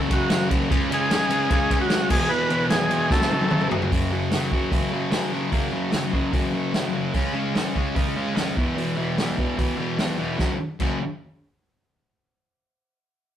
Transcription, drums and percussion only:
0.11 kick medium
0.11 ride medium
0.30 snare loud
0.30 ride loud
0.51 kick loud
0.51 ride medium
0.71 kick loud
0.71 ride loud
0.92 ride medium
1.11 snare loud
1.11 ride loud
1.30 ride medium
1.50 kick loud
1.50 ride loud
1.71 kick medium
1.71 ride medium
1.90 snare loud
1.90 ride loud
2.10 kick loud
2.10 crash loud
2.50 ride medium
2.70 snare loud
2.70 ride loud
2.91 ride medium
3.11 kick loud
3.11 snare medium
3.21 snare medium
3.31 high tom medium
3.41 high tom medium
3.51 mid tom loud
3.61 mid tom medium
3.71 floor tom loud
3.82 floor tom loud
3.91 kick loud
3.91 open hi-hat medium
4.31 snare loud
4.31 open hi-hat medium
4.51 kick medium
4.72 kick loud
4.72 open hi-hat medium
5.12 snare loud
5.12 open hi-hat medium
5.52 kick loud
5.52 open hi-hat medium
5.92 snare loud
5.92 open hi-hat medium
6.13 kick medium
6.33 kick loud
6.33 open hi-hat medium
6.74 snare loud
6.74 open hi-hat medium
7.14 kick loud
7.14 open hi-hat medium
7.55 snare loud
7.55 open hi-hat medium
7.76 kick medium
7.96 kick loud
7.96 open hi-hat medium
8.37 snare loud
8.37 open hi-hat medium
8.57 kick loud
8.78 open hi-hat medium
9.18 snare loud
9.18 open hi-hat medium
9.38 kick medium
9.58 kick loud
9.58 open hi-hat medium
9.99 snare loud
9.99 open hi-hat soft
10.39 kick loud
10.39 snare medium
10.80 kick loud
10.80 crash medium

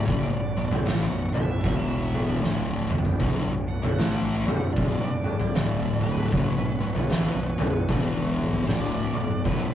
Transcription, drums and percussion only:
0.08 kick loud
0.08 floor tom medium
0.71 floor tom medium
0.87 snare medium
1.34 floor tom medium
1.64 kick loud
1.64 floor tom medium
2.13 mid tom medium
2.28 floor tom medium
2.44 snare medium
2.90 mid tom medium
3.05 floor tom medium
3.20 kick loud
3.20 floor tom medium
3.83 floor tom medium
3.99 snare medium
4.47 floor tom medium
4.76 kick loud
4.76 floor tom medium
5.24 mid tom medium
5.40 floor tom loud
5.54 snare medium
5.54 mid tom medium
6.02 mid tom medium
6.17 mid tom medium
6.32 kick loud
6.32 floor tom medium
6.95 floor tom medium
7.11 snare medium
7.59 floor tom loud
7.89 kick loud
7.89 floor tom medium
8.37 mid tom medium
8.53 floor tom medium
8.68 snare medium
8.68 mid tom medium
9.15 mid tom medium
9.30 mid tom medium
9.45 kick loud
9.45 floor tom medium

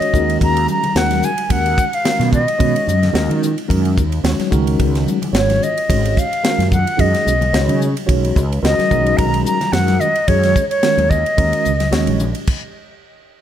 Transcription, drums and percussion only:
0.02 ride medium
0.13 kick medium
0.13 hi-hat pedal medium
0.13 low conga medium
0.30 ride medium
0.41 kick medium
0.41 ride medium
0.57 ride medium
0.68 hi-hat pedal medium
0.68 high conga medium
0.83 ride medium
0.83 high conga medium
0.83 low conga medium
0.96 snare medium
0.96 ride medium
1.11 snare soft
1.11 ride medium
1.11 high conga medium
1.23 hi-hat pedal medium
1.23 low conga medium
1.38 ride medium
1.50 kick medium
1.50 ride medium
1.66 ride medium
1.78 kick medium
1.78 hi-hat pedal medium
1.93 ride medium
2.05 snare medium
2.05 ride medium
2.20 snare soft
2.20 ride medium
2.20 high conga medium
2.33 kick medium
2.33 hi-hat pedal medium
2.33 low conga medium
2.48 ride medium
2.60 kick medium
2.60 ride medium
2.76 ride medium
2.87 hi-hat pedal medium
2.87 high conga medium
3.03 snare soft
3.03 ride medium
3.03 high conga medium
3.03 low conga medium
3.15 snare medium
3.15 ride medium
3.30 ride medium
3.30 high conga medium
3.42 hi-hat pedal medium
3.42 low conga medium
3.58 ride medium
3.70 kick medium
3.70 ride medium
3.85 ride medium
3.98 kick medium
3.98 hi-hat pedal medium
4.12 ride medium
4.24 snare medium
4.24 ride medium
4.39 snare soft
4.39 ride soft
4.39 high conga medium
4.52 kick medium
4.52 hi-hat pedal medium
4.52 low conga medium
4.67 ride medium
4.80 kick medium
4.80 ride medium
4.95 snare soft
4.95 ride medium
5.07 hi-hat pedal medium
5.07 high conga medium
5.22 ride medium
5.22 high conga medium
5.22 low conga medium
5.35 snare loud
5.35 ride medium
5.49 snare soft
5.49 ride soft
5.49 high conga medium
5.62 hi-hat pedal medium
5.62 low conga medium
5.78 ride medium
5.90 kick medium
5.90 ride medium
6.05 ride medium
6.17 kick medium
6.17 hi-hat pedal medium
6.33 ride medium
6.44 snare loud
6.44 ride medium
6.59 snare soft
6.59 ride medium
6.59 high conga medium
6.71 kick medium
6.71 hi-hat pedal medium
6.71 low conga medium
6.87 ride medium
6.99 kick medium
6.99 ride medium
7.14 snare soft
7.14 ride medium
7.26 hi-hat pedal medium
7.26 high conga medium
7.41 ride medium
7.41 high conga medium
7.41 low conga soft
7.54 snare medium
7.54 ride medium
7.69 ride medium
7.69 high conga medium
7.81 hi-hat pedal medium
7.81 low conga soft
7.97 ride medium
8.09 kick medium
8.09 ride medium
8.25 ride medium
8.36 kick medium
8.36 hi-hat pedal medium
8.52 ride soft
8.65 snare loud
8.65 ride medium
8.79 snare soft
8.79 ride medium
8.79 high conga medium
8.91 kick medium
8.91 hi-hat pedal medium
8.91 low conga medium
9.06 ride medium
9.18 kick loud
9.18 ride medium
9.34 ride medium
9.45 hi-hat pedal medium
9.45 high conga medium
9.61 snare soft
9.61 ride medium
9.61 high conga medium
9.61 low conga medium
9.73 snare medium
9.73 ride medium
9.88 snare soft
9.88 ride medium
9.88 high conga medium
10.00 hi-hat pedal medium
10.00 low conga medium
10.15 ride medium
10.28 kick medium
10.28 ride medium
10.43 snare soft
10.43 ride medium
10.56 kick medium
10.56 hi-hat pedal medium
10.71 ride medium
10.83 snare medium
10.83 ride medium
10.98 ride medium
10.98 high conga medium
11.10 kick medium
11.10 hi-hat pedal medium
11.10 low conga medium
11.26 ride medium
11.38 kick medium
11.38 ride medium
11.53 ride medium
11.65 hi-hat pedal medium
11.80 snare soft
11.80 ride medium
11.80 high conga medium
11.92 snare loud
11.92 ride medium
12.07 ride medium
12.07 high conga medium
12.20 hi-hat pedal medium
12.20 low conga medium
12.35 ride medium
12.47 kick loud
12.47 crash medium

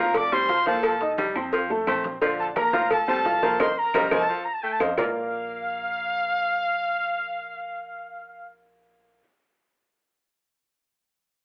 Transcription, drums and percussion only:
0.14 cowbell loud
0.14 high conga soft
0.14 low conga medium
0.14 low agogo loud
0.14 claves medium
0.14 maracas medium
0.32 high conga soft
0.32 maracas soft
0.49 cowbell medium
0.49 high conga soft
0.49 low agogo medium
0.49 maracas medium
0.66 cowbell medium
0.66 high conga medium
0.66 maracas soft
0.83 cowbell loud
0.83 high conga soft
0.83 low agogo loud
0.83 claves medium
0.83 maracas medium
1.01 cowbell medium
1.01 high conga soft
1.01 maracas soft
1.18 cowbell medium
1.18 high conga loud
1.18 low agogo medium
1.18 maracas medium
1.35 high conga soft
1.35 low agogo loud
1.35 claves medium
1.35 maracas soft
1.52 cowbell loud
1.52 high conga soft
1.52 maracas medium
1.70 high conga soft
1.70 maracas soft
1.87 cowbell medium
1.87 high conga medium
1.87 low agogo loud
1.87 claves medium
1.87 maracas medium
2.04 cowbell medium
2.04 high conga medium
2.04 maracas soft
2.22 cowbell loud
2.22 high conga soft
2.22 low agogo medium
2.22 maracas medium
2.39 high conga soft
2.39 maracas soft
2.56 cowbell medium
2.56 high conga loud
2.56 low agogo loud
2.56 claves medium
2.56 maracas medium
2.74 cowbell medium
2.74 high conga loud
2.74 maracas soft
2.90 cowbell loud
2.90 high conga soft
2.90 low conga medium
2.90 low agogo loud
2.90 claves medium
2.90 maracas medium
3.08 high conga soft
3.08 maracas soft
3.25 cowbell medium
3.25 high conga soft
3.25 low timbale medium
3.25 low agogo medium
3.25 maracas medium
3.43 cowbell medium
3.43 high conga loud
3.43 maracas soft
3.60 cowbell loud
3.60 high conga loud
3.60 high timbale loud
3.60 claves loud
3.60 maracas loud
3.94 cowbell loud
3.94 high conga loud
3.94 high timbale loud
3.94 claves loud
3.94 maracas loud
4.11 cowbell loud
4.11 high conga loud
4.11 high timbale loud
4.11 claves loud
4.11 maracas loud
4.80 cowbell loud
4.80 high conga loud
4.80 high timbale loud
4.80 claves loud
4.80 maracas loud
4.97 low bongo loud
4.97 low conga loud
4.97 low timbale loud
4.97 claves loud
4.97 maracas loud

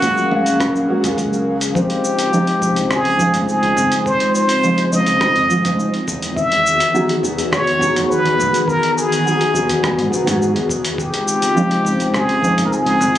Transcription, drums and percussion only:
0.02 kick medium
0.02 closed hi-hat soft
0.02 cabasa medium
0.18 cabasa soft
0.31 mid tom medium
0.46 closed hi-hat medium
0.46 cabasa medium
0.60 kick loud
0.60 cross-stick medium
0.60 closed hi-hat soft
0.60 cabasa medium
0.76 cabasa soft
1.04 closed hi-hat medium
1.04 mid tom medium
1.04 cabasa medium
1.18 kick medium
1.18 closed hi-hat soft
1.18 cabasa medium
1.33 cabasa soft
1.61 closed hi-hat soft
1.61 cabasa medium
1.75 kick loud
1.75 cabasa soft
1.90 closed hi-hat soft
2.04 cabasa medium
2.19 closed hi-hat medium
2.19 cabasa soft
2.33 cabasa soft
2.47 closed hi-hat soft
2.62 kick medium
2.62 cabasa medium
2.76 closed hi-hat medium
2.76 cabasa soft
2.91 kick loud
2.91 cross-stick medium
2.91 cabasa soft
3.05 closed hi-hat soft
3.19 kick loud
3.19 cabasa medium
3.34 closed hi-hat medium
3.34 mid tom medium
3.34 cabasa soft
3.49 cabasa soft
3.63 closed hi-hat soft
3.77 mid tom medium
3.77 cabasa medium
3.92 closed hi-hat medium
3.92 cabasa soft
4.06 kick loud
4.06 cabasa soft
4.20 closed hi-hat soft
4.35 cabasa medium
4.49 closed hi-hat medium
4.49 cabasa soft
4.64 cabasa soft
4.78 closed hi-hat soft
4.93 cabasa medium
5.06 closed hi-hat medium
5.06 cabasa soft
5.21 kick loud
5.21 cross-stick medium
5.21 cabasa soft
5.36 closed hi-hat soft
5.50 cabasa medium
5.65 closed hi-hat medium
5.65 mid tom medium
5.65 cabasa soft
5.80 cabasa soft
5.94 closed hi-hat soft
6.08 kick loud
6.08 cabasa medium
6.22 closed hi-hat medium
6.22 cabasa soft
6.37 kick loud
6.37 cabasa soft
6.52 closed hi-hat soft
6.67 cabasa medium
6.80 closed hi-hat medium
6.80 cabasa soft
6.95 cabasa soft
7.09 closed hi-hat soft
7.23 kick medium
7.23 cabasa medium
7.38 closed hi-hat soft
7.38 cabasa soft
7.52 kick loud
7.52 cross-stick medium
7.52 cabasa soft
7.67 closed hi-hat soft
7.81 kick loud
7.81 cabasa medium
7.96 closed hi-hat medium
7.96 mid tom medium
7.96 cabasa soft
8.11 cabasa soft
8.26 closed hi-hat soft
8.40 mid tom medium
8.40 cabasa medium
8.54 closed hi-hat medium
8.54 cabasa soft
8.68 kick loud
8.68 cabasa soft
8.83 closed hi-hat soft
8.98 cabasa medium
9.12 closed hi-hat medium
9.12 cabasa soft
9.27 cabasa soft
9.41 closed hi-hat soft
9.54 kick medium
9.54 cabasa medium
9.69 closed hi-hat medium
9.69 cabasa soft
9.83 kick loud
9.83 cross-stick medium
9.83 cabasa soft
9.99 closed hi-hat soft
10.12 kick medium
10.12 cabasa medium
10.27 closed hi-hat medium
10.27 mid tom medium
10.27 cabasa soft
10.42 cabasa soft
10.56 closed hi-hat soft
10.69 kick loud
10.69 cabasa medium
10.85 closed hi-hat medium
10.85 cabasa soft
10.98 kick loud
10.98 cabasa soft
11.14 closed hi-hat soft
11.28 cabasa medium
11.42 closed hi-hat medium
11.42 cabasa soft
11.57 cabasa soft
11.71 closed hi-hat soft
11.85 kick medium
11.85 cabasa medium
12.00 closed hi-hat medium
12.00 cabasa soft
12.14 kick loud
12.14 cross-stick medium
12.14 cabasa soft
12.29 closed hi-hat soft
12.43 kick medium
12.43 cabasa medium
12.58 closed hi-hat medium
12.58 mid tom medium
12.58 cabasa soft
12.73 cabasa soft
12.86 closed hi-hat soft
13.01 mid tom medium
13.01 cabasa medium

